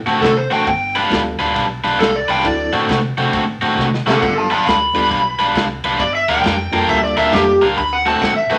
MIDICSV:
0, 0, Header, 1, 6, 480
1, 0, Start_track
1, 0, Tempo, 444115
1, 724, Time_signature, 4, 2, 24, 8
1, 9278, End_track
2, 0, Start_track
2, 0, Title_t, "Electric slide guitar"
2, 0, Program_c, 0, 29
2, 236, Note_on_c, 0, 69, 96
2, 395, Note_off_c, 0, 69, 0
2, 400, Note_on_c, 0, 72, 89
2, 557, Note_off_c, 0, 72, 0
2, 567, Note_on_c, 0, 79, 86
2, 717, Note_off_c, 0, 79, 0
2, 730, Note_on_c, 0, 79, 107
2, 1027, Note_off_c, 0, 79, 0
2, 2166, Note_on_c, 0, 69, 93
2, 2322, Note_off_c, 0, 69, 0
2, 2332, Note_on_c, 0, 74, 88
2, 2485, Note_off_c, 0, 74, 0
2, 2492, Note_on_c, 0, 79, 91
2, 2645, Note_off_c, 0, 79, 0
2, 2655, Note_on_c, 0, 74, 94
2, 2950, Note_off_c, 0, 74, 0
2, 4404, Note_on_c, 0, 69, 81
2, 4406, Note_on_c, 0, 78, 97
2, 4549, Note_off_c, 0, 69, 0
2, 4555, Note_off_c, 0, 78, 0
2, 4562, Note_on_c, 0, 69, 72
2, 4568, Note_on_c, 0, 78, 91
2, 4714, Note_off_c, 0, 69, 0
2, 4723, Note_off_c, 0, 78, 0
2, 4729, Note_on_c, 0, 77, 74
2, 4734, Note_on_c, 0, 81, 88
2, 4870, Note_off_c, 0, 77, 0
2, 4879, Note_off_c, 0, 81, 0
2, 4883, Note_on_c, 0, 77, 88
2, 4892, Note_on_c, 0, 81, 99
2, 5034, Note_off_c, 0, 77, 0
2, 5045, Note_off_c, 0, 81, 0
2, 5054, Note_on_c, 0, 83, 107
2, 5982, Note_off_c, 0, 83, 0
2, 6489, Note_on_c, 0, 74, 111
2, 6643, Note_off_c, 0, 74, 0
2, 6647, Note_on_c, 0, 76, 89
2, 6803, Note_off_c, 0, 76, 0
2, 6812, Note_on_c, 0, 79, 110
2, 7430, Note_off_c, 0, 79, 0
2, 7451, Note_on_c, 0, 76, 81
2, 7604, Note_off_c, 0, 76, 0
2, 7608, Note_on_c, 0, 74, 94
2, 7758, Note_off_c, 0, 74, 0
2, 7762, Note_on_c, 0, 76, 94
2, 7919, Note_off_c, 0, 76, 0
2, 7923, Note_on_c, 0, 67, 112
2, 8223, Note_off_c, 0, 67, 0
2, 8406, Note_on_c, 0, 83, 95
2, 8561, Note_off_c, 0, 83, 0
2, 8569, Note_on_c, 0, 78, 85
2, 8723, Note_off_c, 0, 78, 0
2, 8729, Note_on_c, 0, 81, 94
2, 8878, Note_on_c, 0, 78, 97
2, 8883, Note_off_c, 0, 81, 0
2, 9036, Note_off_c, 0, 78, 0
2, 9041, Note_on_c, 0, 76, 88
2, 9198, Note_off_c, 0, 76, 0
2, 9211, Note_on_c, 0, 71, 91
2, 9278, Note_off_c, 0, 71, 0
2, 9278, End_track
3, 0, Start_track
3, 0, Title_t, "Overdriven electric guitar"
3, 0, Program_c, 1, 29
3, 68, Note_on_c, 1, 66, 100
3, 76, Note_on_c, 1, 60, 88
3, 79, Note_on_c, 1, 57, 93
3, 80, Note_on_c, 1, 50, 81
3, 335, Note_off_c, 1, 66, 0
3, 339, Note_off_c, 1, 60, 0
3, 340, Note_off_c, 1, 57, 0
3, 341, Note_off_c, 1, 50, 0
3, 546, Note_on_c, 1, 66, 83
3, 553, Note_on_c, 1, 60, 73
3, 554, Note_on_c, 1, 57, 65
3, 559, Note_on_c, 1, 50, 72
3, 722, Note_off_c, 1, 66, 0
3, 725, Note_off_c, 1, 60, 0
3, 726, Note_off_c, 1, 57, 0
3, 728, Note_off_c, 1, 50, 0
3, 1032, Note_on_c, 1, 71, 99
3, 1038, Note_on_c, 1, 65, 92
3, 1041, Note_on_c, 1, 62, 85
3, 1047, Note_on_c, 1, 55, 75
3, 1298, Note_off_c, 1, 71, 0
3, 1301, Note_off_c, 1, 65, 0
3, 1302, Note_off_c, 1, 62, 0
3, 1305, Note_off_c, 1, 55, 0
3, 1504, Note_on_c, 1, 71, 83
3, 1507, Note_on_c, 1, 65, 80
3, 1514, Note_on_c, 1, 62, 76
3, 1516, Note_on_c, 1, 55, 68
3, 1774, Note_off_c, 1, 71, 0
3, 1776, Note_off_c, 1, 65, 0
3, 1779, Note_off_c, 1, 62, 0
3, 1780, Note_off_c, 1, 55, 0
3, 1988, Note_on_c, 1, 71, 96
3, 1991, Note_on_c, 1, 62, 90
3, 1992, Note_on_c, 1, 65, 97
3, 2000, Note_on_c, 1, 55, 74
3, 2256, Note_off_c, 1, 71, 0
3, 2258, Note_off_c, 1, 62, 0
3, 2258, Note_off_c, 1, 65, 0
3, 2263, Note_off_c, 1, 55, 0
3, 2469, Note_on_c, 1, 71, 80
3, 2475, Note_on_c, 1, 65, 75
3, 2482, Note_on_c, 1, 62, 67
3, 2485, Note_on_c, 1, 55, 64
3, 2645, Note_off_c, 1, 71, 0
3, 2648, Note_off_c, 1, 65, 0
3, 2651, Note_off_c, 1, 62, 0
3, 2653, Note_off_c, 1, 55, 0
3, 2950, Note_on_c, 1, 66, 94
3, 2956, Note_on_c, 1, 60, 88
3, 2962, Note_on_c, 1, 57, 88
3, 2963, Note_on_c, 1, 50, 77
3, 3218, Note_off_c, 1, 66, 0
3, 3221, Note_off_c, 1, 60, 0
3, 3223, Note_off_c, 1, 57, 0
3, 3224, Note_off_c, 1, 50, 0
3, 3433, Note_on_c, 1, 66, 75
3, 3440, Note_on_c, 1, 60, 85
3, 3445, Note_on_c, 1, 57, 65
3, 3449, Note_on_c, 1, 50, 71
3, 3700, Note_off_c, 1, 66, 0
3, 3703, Note_off_c, 1, 60, 0
3, 3705, Note_off_c, 1, 57, 0
3, 3707, Note_off_c, 1, 50, 0
3, 3906, Note_on_c, 1, 66, 101
3, 3911, Note_on_c, 1, 60, 81
3, 3914, Note_on_c, 1, 57, 83
3, 3920, Note_on_c, 1, 50, 69
3, 4176, Note_off_c, 1, 66, 0
3, 4178, Note_off_c, 1, 60, 0
3, 4180, Note_off_c, 1, 57, 0
3, 4183, Note_off_c, 1, 50, 0
3, 4394, Note_on_c, 1, 66, 84
3, 4398, Note_on_c, 1, 60, 67
3, 4400, Note_on_c, 1, 57, 68
3, 4405, Note_on_c, 1, 50, 67
3, 4567, Note_off_c, 1, 66, 0
3, 4569, Note_off_c, 1, 60, 0
3, 4570, Note_off_c, 1, 57, 0
3, 4573, Note_off_c, 1, 50, 0
3, 4869, Note_on_c, 1, 71, 97
3, 4871, Note_on_c, 1, 65, 87
3, 4877, Note_on_c, 1, 62, 86
3, 4881, Note_on_c, 1, 55, 75
3, 5137, Note_off_c, 1, 71, 0
3, 5138, Note_off_c, 1, 65, 0
3, 5141, Note_off_c, 1, 62, 0
3, 5143, Note_off_c, 1, 55, 0
3, 5351, Note_on_c, 1, 71, 85
3, 5355, Note_on_c, 1, 65, 81
3, 5359, Note_on_c, 1, 62, 67
3, 5366, Note_on_c, 1, 55, 64
3, 5618, Note_off_c, 1, 71, 0
3, 5620, Note_off_c, 1, 65, 0
3, 5622, Note_off_c, 1, 62, 0
3, 5625, Note_off_c, 1, 55, 0
3, 5826, Note_on_c, 1, 71, 96
3, 5831, Note_on_c, 1, 65, 99
3, 5835, Note_on_c, 1, 62, 86
3, 5841, Note_on_c, 1, 55, 78
3, 6095, Note_off_c, 1, 71, 0
3, 6098, Note_off_c, 1, 65, 0
3, 6100, Note_off_c, 1, 62, 0
3, 6103, Note_off_c, 1, 55, 0
3, 6316, Note_on_c, 1, 71, 76
3, 6321, Note_on_c, 1, 65, 73
3, 6325, Note_on_c, 1, 62, 67
3, 6329, Note_on_c, 1, 55, 59
3, 6488, Note_off_c, 1, 71, 0
3, 6491, Note_off_c, 1, 65, 0
3, 6493, Note_off_c, 1, 62, 0
3, 6494, Note_off_c, 1, 55, 0
3, 6796, Note_on_c, 1, 70, 90
3, 6800, Note_on_c, 1, 65, 88
3, 6807, Note_on_c, 1, 62, 79
3, 6809, Note_on_c, 1, 55, 78
3, 7060, Note_off_c, 1, 70, 0
3, 7062, Note_off_c, 1, 65, 0
3, 7066, Note_off_c, 1, 62, 0
3, 7067, Note_off_c, 1, 55, 0
3, 7274, Note_on_c, 1, 70, 83
3, 7278, Note_on_c, 1, 65, 81
3, 7285, Note_on_c, 1, 62, 77
3, 7288, Note_on_c, 1, 55, 73
3, 7539, Note_off_c, 1, 70, 0
3, 7541, Note_off_c, 1, 65, 0
3, 7545, Note_off_c, 1, 62, 0
3, 7546, Note_off_c, 1, 55, 0
3, 7751, Note_on_c, 1, 70, 106
3, 7755, Note_on_c, 1, 65, 88
3, 7761, Note_on_c, 1, 62, 85
3, 7766, Note_on_c, 1, 55, 82
3, 8017, Note_off_c, 1, 70, 0
3, 8019, Note_off_c, 1, 65, 0
3, 8022, Note_off_c, 1, 62, 0
3, 8025, Note_off_c, 1, 55, 0
3, 8232, Note_on_c, 1, 70, 81
3, 8237, Note_on_c, 1, 65, 76
3, 8242, Note_on_c, 1, 62, 71
3, 8247, Note_on_c, 1, 55, 61
3, 8405, Note_off_c, 1, 70, 0
3, 8408, Note_off_c, 1, 65, 0
3, 8410, Note_off_c, 1, 62, 0
3, 8413, Note_off_c, 1, 55, 0
3, 8709, Note_on_c, 1, 66, 96
3, 8714, Note_on_c, 1, 60, 91
3, 8719, Note_on_c, 1, 57, 89
3, 8722, Note_on_c, 1, 50, 79
3, 8976, Note_off_c, 1, 66, 0
3, 8978, Note_off_c, 1, 60, 0
3, 8981, Note_off_c, 1, 57, 0
3, 8982, Note_off_c, 1, 50, 0
3, 9188, Note_on_c, 1, 66, 93
3, 9192, Note_on_c, 1, 60, 79
3, 9198, Note_on_c, 1, 57, 78
3, 9202, Note_on_c, 1, 50, 72
3, 9278, Note_off_c, 1, 50, 0
3, 9278, Note_off_c, 1, 57, 0
3, 9278, Note_off_c, 1, 60, 0
3, 9278, Note_off_c, 1, 66, 0
3, 9278, End_track
4, 0, Start_track
4, 0, Title_t, "Reed electric piano"
4, 0, Program_c, 2, 4
4, 1191, Note_on_c, 2, 55, 68
4, 1192, Note_on_c, 2, 59, 56
4, 1199, Note_on_c, 2, 62, 60
4, 1200, Note_on_c, 2, 65, 64
4, 1206, Note_on_c, 2, 69, 72
4, 1476, Note_off_c, 2, 55, 0
4, 1476, Note_off_c, 2, 59, 0
4, 1480, Note_off_c, 2, 62, 0
4, 1480, Note_off_c, 2, 65, 0
4, 1483, Note_off_c, 2, 69, 0
4, 2626, Note_on_c, 2, 54, 74
4, 2635, Note_on_c, 2, 60, 67
4, 2637, Note_on_c, 2, 62, 70
4, 2643, Note_on_c, 2, 64, 70
4, 2645, Note_on_c, 2, 69, 84
4, 2914, Note_off_c, 2, 54, 0
4, 2919, Note_off_c, 2, 60, 0
4, 2919, Note_off_c, 2, 62, 0
4, 2922, Note_off_c, 2, 64, 0
4, 2924, Note_off_c, 2, 69, 0
4, 4544, Note_on_c, 2, 55, 65
4, 4550, Note_on_c, 2, 59, 59
4, 4555, Note_on_c, 2, 62, 65
4, 4559, Note_on_c, 2, 65, 65
4, 4562, Note_on_c, 2, 69, 75
4, 4833, Note_off_c, 2, 55, 0
4, 4836, Note_off_c, 2, 59, 0
4, 4838, Note_off_c, 2, 62, 0
4, 4841, Note_off_c, 2, 65, 0
4, 4842, Note_off_c, 2, 69, 0
4, 5328, Note_on_c, 2, 55, 71
4, 5334, Note_on_c, 2, 59, 68
4, 5337, Note_on_c, 2, 62, 66
4, 5344, Note_on_c, 2, 65, 68
4, 5348, Note_on_c, 2, 69, 82
4, 5497, Note_off_c, 2, 55, 0
4, 5500, Note_off_c, 2, 59, 0
4, 5501, Note_off_c, 2, 62, 0
4, 5505, Note_off_c, 2, 65, 0
4, 5507, Note_off_c, 2, 69, 0
4, 7253, Note_on_c, 2, 55, 69
4, 7263, Note_on_c, 2, 58, 66
4, 7263, Note_on_c, 2, 62, 64
4, 7268, Note_on_c, 2, 65, 67
4, 7272, Note_on_c, 2, 69, 75
4, 7881, Note_off_c, 2, 55, 0
4, 7886, Note_off_c, 2, 58, 0
4, 7886, Note_off_c, 2, 62, 0
4, 7889, Note_off_c, 2, 65, 0
4, 7891, Note_off_c, 2, 69, 0
4, 7906, Note_on_c, 2, 55, 72
4, 7909, Note_on_c, 2, 58, 68
4, 7915, Note_on_c, 2, 62, 68
4, 7919, Note_on_c, 2, 65, 62
4, 7926, Note_on_c, 2, 69, 75
4, 8193, Note_off_c, 2, 55, 0
4, 8194, Note_off_c, 2, 58, 0
4, 8197, Note_off_c, 2, 62, 0
4, 8200, Note_off_c, 2, 65, 0
4, 8203, Note_off_c, 2, 69, 0
4, 9278, End_track
5, 0, Start_track
5, 0, Title_t, "Fingered electric bass"
5, 0, Program_c, 3, 33
5, 67, Note_on_c, 3, 45, 90
5, 208, Note_off_c, 3, 45, 0
5, 245, Note_on_c, 3, 48, 84
5, 494, Note_off_c, 3, 48, 0
5, 544, Note_on_c, 3, 33, 93
5, 687, Note_off_c, 3, 33, 0
5, 728, Note_on_c, 3, 31, 107
5, 1116, Note_off_c, 3, 31, 0
5, 1203, Note_on_c, 3, 38, 93
5, 1454, Note_off_c, 3, 38, 0
5, 1509, Note_on_c, 3, 38, 88
5, 1651, Note_off_c, 3, 38, 0
5, 1684, Note_on_c, 3, 35, 94
5, 1935, Note_off_c, 3, 35, 0
5, 1993, Note_on_c, 3, 35, 86
5, 2133, Note_off_c, 3, 35, 0
5, 2164, Note_on_c, 3, 36, 86
5, 2415, Note_off_c, 3, 36, 0
5, 2470, Note_on_c, 3, 36, 84
5, 2612, Note_off_c, 3, 36, 0
5, 2641, Note_on_c, 3, 38, 98
5, 2893, Note_off_c, 3, 38, 0
5, 2952, Note_on_c, 3, 45, 89
5, 3093, Note_off_c, 3, 45, 0
5, 3121, Note_on_c, 3, 48, 92
5, 3374, Note_off_c, 3, 48, 0
5, 3433, Note_on_c, 3, 48, 89
5, 3574, Note_off_c, 3, 48, 0
5, 3604, Note_on_c, 3, 45, 99
5, 3855, Note_off_c, 3, 45, 0
5, 3913, Note_on_c, 3, 45, 89
5, 4054, Note_off_c, 3, 45, 0
5, 4082, Note_on_c, 3, 48, 82
5, 4334, Note_off_c, 3, 48, 0
5, 4391, Note_on_c, 3, 48, 94
5, 4533, Note_off_c, 3, 48, 0
5, 4565, Note_on_c, 3, 31, 108
5, 4955, Note_off_c, 3, 31, 0
5, 5040, Note_on_c, 3, 38, 92
5, 5293, Note_off_c, 3, 38, 0
5, 5341, Note_on_c, 3, 38, 91
5, 5486, Note_off_c, 3, 38, 0
5, 5523, Note_on_c, 3, 35, 93
5, 5774, Note_off_c, 3, 35, 0
5, 5824, Note_on_c, 3, 35, 83
5, 5968, Note_off_c, 3, 35, 0
5, 6004, Note_on_c, 3, 36, 91
5, 6254, Note_off_c, 3, 36, 0
5, 6309, Note_on_c, 3, 36, 89
5, 6451, Note_off_c, 3, 36, 0
5, 6482, Note_on_c, 3, 31, 98
5, 6733, Note_off_c, 3, 31, 0
5, 6790, Note_on_c, 3, 38, 100
5, 6931, Note_off_c, 3, 38, 0
5, 6960, Note_on_c, 3, 41, 90
5, 7212, Note_off_c, 3, 41, 0
5, 7271, Note_on_c, 3, 41, 86
5, 7412, Note_off_c, 3, 41, 0
5, 7442, Note_on_c, 3, 38, 98
5, 7693, Note_off_c, 3, 38, 0
5, 7747, Note_on_c, 3, 38, 89
5, 7889, Note_off_c, 3, 38, 0
5, 7923, Note_on_c, 3, 41, 95
5, 8174, Note_off_c, 3, 41, 0
5, 8231, Note_on_c, 3, 37, 92
5, 8372, Note_off_c, 3, 37, 0
5, 8400, Note_on_c, 3, 38, 103
5, 8791, Note_off_c, 3, 38, 0
5, 8882, Note_on_c, 3, 45, 91
5, 9132, Note_off_c, 3, 45, 0
5, 9187, Note_on_c, 3, 45, 95
5, 9278, Note_off_c, 3, 45, 0
5, 9278, End_track
6, 0, Start_track
6, 0, Title_t, "Drums"
6, 70, Note_on_c, 9, 51, 55
6, 90, Note_on_c, 9, 38, 35
6, 178, Note_off_c, 9, 51, 0
6, 198, Note_off_c, 9, 38, 0
6, 243, Note_on_c, 9, 36, 82
6, 244, Note_on_c, 9, 51, 78
6, 264, Note_on_c, 9, 38, 109
6, 351, Note_off_c, 9, 36, 0
6, 353, Note_off_c, 9, 51, 0
6, 372, Note_off_c, 9, 38, 0
6, 552, Note_on_c, 9, 51, 57
6, 572, Note_on_c, 9, 38, 37
6, 660, Note_off_c, 9, 51, 0
6, 680, Note_off_c, 9, 38, 0
6, 725, Note_on_c, 9, 36, 84
6, 725, Note_on_c, 9, 51, 80
6, 833, Note_off_c, 9, 51, 0
6, 834, Note_off_c, 9, 36, 0
6, 1032, Note_on_c, 9, 51, 59
6, 1052, Note_on_c, 9, 38, 34
6, 1140, Note_off_c, 9, 51, 0
6, 1160, Note_off_c, 9, 38, 0
6, 1203, Note_on_c, 9, 51, 84
6, 1205, Note_on_c, 9, 36, 85
6, 1223, Note_on_c, 9, 38, 116
6, 1311, Note_off_c, 9, 51, 0
6, 1313, Note_off_c, 9, 36, 0
6, 1331, Note_off_c, 9, 38, 0
6, 1513, Note_on_c, 9, 51, 64
6, 1532, Note_on_c, 9, 38, 33
6, 1621, Note_off_c, 9, 51, 0
6, 1640, Note_off_c, 9, 38, 0
6, 1686, Note_on_c, 9, 36, 91
6, 1686, Note_on_c, 9, 51, 89
6, 1706, Note_on_c, 9, 38, 32
6, 1794, Note_off_c, 9, 36, 0
6, 1794, Note_off_c, 9, 51, 0
6, 1814, Note_off_c, 9, 38, 0
6, 1994, Note_on_c, 9, 51, 60
6, 2014, Note_on_c, 9, 38, 34
6, 2102, Note_off_c, 9, 51, 0
6, 2122, Note_off_c, 9, 38, 0
6, 2166, Note_on_c, 9, 36, 74
6, 2166, Note_on_c, 9, 51, 78
6, 2186, Note_on_c, 9, 38, 107
6, 2274, Note_off_c, 9, 51, 0
6, 2275, Note_off_c, 9, 36, 0
6, 2294, Note_off_c, 9, 38, 0
6, 2476, Note_on_c, 9, 51, 69
6, 2496, Note_on_c, 9, 38, 37
6, 2584, Note_off_c, 9, 51, 0
6, 2604, Note_off_c, 9, 38, 0
6, 2645, Note_on_c, 9, 36, 93
6, 2645, Note_on_c, 9, 51, 91
6, 2753, Note_off_c, 9, 36, 0
6, 2753, Note_off_c, 9, 51, 0
6, 2953, Note_on_c, 9, 51, 70
6, 2973, Note_on_c, 9, 38, 35
6, 3061, Note_off_c, 9, 51, 0
6, 3081, Note_off_c, 9, 38, 0
6, 3124, Note_on_c, 9, 36, 88
6, 3124, Note_on_c, 9, 51, 86
6, 3143, Note_on_c, 9, 38, 103
6, 3232, Note_off_c, 9, 36, 0
6, 3232, Note_off_c, 9, 51, 0
6, 3251, Note_off_c, 9, 38, 0
6, 3433, Note_on_c, 9, 51, 62
6, 3453, Note_on_c, 9, 38, 33
6, 3541, Note_off_c, 9, 51, 0
6, 3561, Note_off_c, 9, 38, 0
6, 3600, Note_on_c, 9, 51, 88
6, 3604, Note_on_c, 9, 36, 91
6, 3620, Note_on_c, 9, 38, 33
6, 3708, Note_off_c, 9, 51, 0
6, 3712, Note_off_c, 9, 36, 0
6, 3728, Note_off_c, 9, 38, 0
6, 3917, Note_on_c, 9, 51, 58
6, 3936, Note_on_c, 9, 38, 36
6, 4025, Note_off_c, 9, 51, 0
6, 4044, Note_off_c, 9, 38, 0
6, 4085, Note_on_c, 9, 36, 79
6, 4105, Note_on_c, 9, 38, 61
6, 4193, Note_off_c, 9, 36, 0
6, 4213, Note_off_c, 9, 38, 0
6, 4261, Note_on_c, 9, 38, 74
6, 4369, Note_off_c, 9, 38, 0
6, 4422, Note_on_c, 9, 38, 108
6, 4530, Note_off_c, 9, 38, 0
6, 4565, Note_on_c, 9, 36, 92
6, 4567, Note_on_c, 9, 51, 89
6, 4587, Note_on_c, 9, 38, 33
6, 4673, Note_off_c, 9, 36, 0
6, 4676, Note_off_c, 9, 51, 0
6, 4695, Note_off_c, 9, 38, 0
6, 4875, Note_on_c, 9, 51, 55
6, 4894, Note_on_c, 9, 38, 35
6, 4983, Note_off_c, 9, 51, 0
6, 5002, Note_off_c, 9, 38, 0
6, 5045, Note_on_c, 9, 36, 87
6, 5047, Note_on_c, 9, 51, 80
6, 5066, Note_on_c, 9, 38, 119
6, 5153, Note_off_c, 9, 36, 0
6, 5155, Note_off_c, 9, 51, 0
6, 5174, Note_off_c, 9, 38, 0
6, 5356, Note_on_c, 9, 51, 62
6, 5375, Note_on_c, 9, 38, 33
6, 5464, Note_off_c, 9, 51, 0
6, 5483, Note_off_c, 9, 38, 0
6, 5524, Note_on_c, 9, 36, 88
6, 5526, Note_on_c, 9, 51, 83
6, 5545, Note_on_c, 9, 38, 33
6, 5632, Note_off_c, 9, 36, 0
6, 5634, Note_off_c, 9, 51, 0
6, 5653, Note_off_c, 9, 38, 0
6, 5835, Note_on_c, 9, 51, 63
6, 5854, Note_on_c, 9, 38, 32
6, 5943, Note_off_c, 9, 51, 0
6, 5962, Note_off_c, 9, 38, 0
6, 6002, Note_on_c, 9, 51, 83
6, 6003, Note_on_c, 9, 36, 75
6, 6021, Note_on_c, 9, 38, 111
6, 6110, Note_off_c, 9, 51, 0
6, 6111, Note_off_c, 9, 36, 0
6, 6130, Note_off_c, 9, 38, 0
6, 6309, Note_on_c, 9, 51, 69
6, 6328, Note_on_c, 9, 38, 35
6, 6417, Note_off_c, 9, 51, 0
6, 6436, Note_off_c, 9, 38, 0
6, 6482, Note_on_c, 9, 36, 86
6, 6483, Note_on_c, 9, 51, 95
6, 6590, Note_off_c, 9, 36, 0
6, 6591, Note_off_c, 9, 51, 0
6, 6789, Note_on_c, 9, 51, 64
6, 6808, Note_on_c, 9, 38, 38
6, 6897, Note_off_c, 9, 51, 0
6, 6916, Note_off_c, 9, 38, 0
6, 6960, Note_on_c, 9, 51, 86
6, 6962, Note_on_c, 9, 36, 88
6, 6979, Note_on_c, 9, 38, 112
6, 7068, Note_off_c, 9, 51, 0
6, 7070, Note_off_c, 9, 36, 0
6, 7088, Note_off_c, 9, 38, 0
6, 7273, Note_on_c, 9, 51, 67
6, 7292, Note_on_c, 9, 38, 33
6, 7381, Note_off_c, 9, 51, 0
6, 7400, Note_off_c, 9, 38, 0
6, 7443, Note_on_c, 9, 36, 93
6, 7446, Note_on_c, 9, 51, 87
6, 7551, Note_off_c, 9, 36, 0
6, 7554, Note_off_c, 9, 51, 0
6, 7754, Note_on_c, 9, 51, 66
6, 7774, Note_on_c, 9, 38, 37
6, 7862, Note_off_c, 9, 51, 0
6, 7882, Note_off_c, 9, 38, 0
6, 7922, Note_on_c, 9, 51, 78
6, 7923, Note_on_c, 9, 36, 85
6, 7942, Note_on_c, 9, 38, 108
6, 8030, Note_off_c, 9, 51, 0
6, 8031, Note_off_c, 9, 36, 0
6, 8050, Note_off_c, 9, 38, 0
6, 8233, Note_on_c, 9, 51, 62
6, 8253, Note_on_c, 9, 38, 36
6, 8342, Note_off_c, 9, 51, 0
6, 8361, Note_off_c, 9, 38, 0
6, 8404, Note_on_c, 9, 36, 92
6, 8406, Note_on_c, 9, 51, 78
6, 8512, Note_off_c, 9, 36, 0
6, 8514, Note_off_c, 9, 51, 0
6, 8713, Note_on_c, 9, 51, 64
6, 8732, Note_on_c, 9, 38, 36
6, 8821, Note_off_c, 9, 51, 0
6, 8840, Note_off_c, 9, 38, 0
6, 8881, Note_on_c, 9, 51, 81
6, 8882, Note_on_c, 9, 36, 89
6, 8900, Note_on_c, 9, 38, 124
6, 8989, Note_off_c, 9, 51, 0
6, 8990, Note_off_c, 9, 36, 0
6, 9008, Note_off_c, 9, 38, 0
6, 9194, Note_on_c, 9, 51, 62
6, 9213, Note_on_c, 9, 38, 32
6, 9278, Note_off_c, 9, 38, 0
6, 9278, Note_off_c, 9, 51, 0
6, 9278, End_track
0, 0, End_of_file